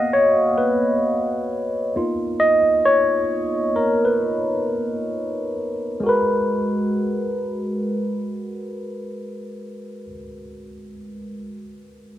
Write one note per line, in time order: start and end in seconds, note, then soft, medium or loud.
0.00 1.96 A#3 soft
0.00 1.96 B3 soft
0.00 1.96 F#4 soft
0.00 0.14 D#5 medium
0.00 1.96 F5 medium
0.00 1.96 F#5 medium
0.13 0.55 C#5 medium
0.58 1.90 B4 medium
1.96 2.60 A#3 soft
1.96 2.60 B3 soft
1.96 2.61 D#4 soft
1.96 2.61 F4 medium
2.40 2.60 D#5 medium
2.85 3.72 C#5 medium
3.76 4.03 A#4 medium
4.05 5.54 B4 medium
6.00 10.05 G#3 medium
6.00 10.08 F#4 soft
6.06 10.11 A#4 soft
6.06 10.13 B4 medium